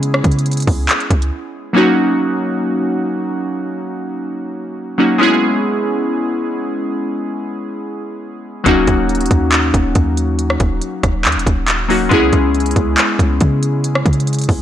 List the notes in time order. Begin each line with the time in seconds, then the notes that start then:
Already playing: C#3 G#3 B3 C#4 E4 G#4
0.03 closed hi-hat
0.14 cross-stick
0.24 C#3, kick, closed hi-hat
0.32 closed hi-hat
0.39 closed hi-hat
0.46 closed hi-hat
0.52 closed hi-hat
0.53 closed hi-hat
0.57 closed hi-hat
0.60 closed hi-hat
0.62 closed hi-hat
0.67 C#2, kick, open hi-hat
0.89 clap, closed hi-hat
1.00 closed hi-hat
1.10 C#2, kick, closed hi-hat
1.22 closed hi-hat
1.73 F#3 A#3 C#4 D#4
1.78 F#4
4.98 F#3 A#3 C#4 D#4 F#4
5.18 G#3 B3 C#4 E4
5.23 G#4
8.64 D#1 F#3 A#3 C#4 D#4, kick, closed hi-hat
8.68 F#4
8.87 D#1, kick, closed hi-hat
9.09 closed hi-hat
9.15 closed hi-hat
9.21 closed hi-hat
9.26 closed hi-hat
9.31 D#2, kick, closed hi-hat
9.52 clap, closed hi-hat
9.74 D#1, kick, closed hi-hat
9.95 D#2, kick, closed hi-hat
10.17 closed hi-hat
10.39 closed hi-hat
10.50 cross-stick
10.60 D#1, kick, closed hi-hat
10.82 closed hi-hat
11.03 D#1, kick, cross-stick, closed hi-hat
11.25 D#2, clap, closed hi-hat
11.32 closed hi-hat
11.36 D#1, closed hi-hat
11.46 D#1, kick, closed hi-hat
11.68 clap, closed hi-hat
11.89 F#3 A#3 C#4 D#4 F#4, open hi-hat
12.09 C#2 G#3 B3 C#4 E4, kick, closed hi-hat
12.14 G#4
12.33 C#2, kick, closed hi-hat
12.55 closed hi-hat
12.60 closed hi-hat
12.66 closed hi-hat
12.71 closed hi-hat
12.76 C#2, kick, closed hi-hat
12.98 clap, closed hi-hat
13.19 C#2, kick, closed hi-hat
13.41 C#3, kick, closed hi-hat
13.63 closed hi-hat
13.84 closed hi-hat
13.95 cross-stick
14.06 C#3, kick, closed hi-hat
14.13 closed hi-hat
14.20 closed hi-hat
14.27 closed hi-hat
14.33 closed hi-hat
14.34 closed hi-hat
14.39 closed hi-hat
14.41 closed hi-hat
14.44 closed hi-hat
14.49 C#2, kick, open hi-hat